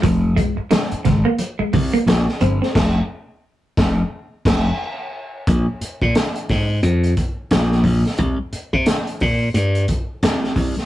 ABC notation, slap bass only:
X:1
M:4/4
L:1/16
Q:"Swing 16ths" 1/4=88
K:Fm
V:1 name="Slap bass" clef=bass
F,,,2 z4 A,,, z3 C,, z B,,, z G,,, z | F,,,2 z4 F,,,2 z2 F,,,2 z4 | B,,, z2 B,, z2 A,,2 F,,2 z2 B,,,2 B,,, z | C,, z2 C, z2 B,,2 G,,2 z2 C,,2 C,, z |]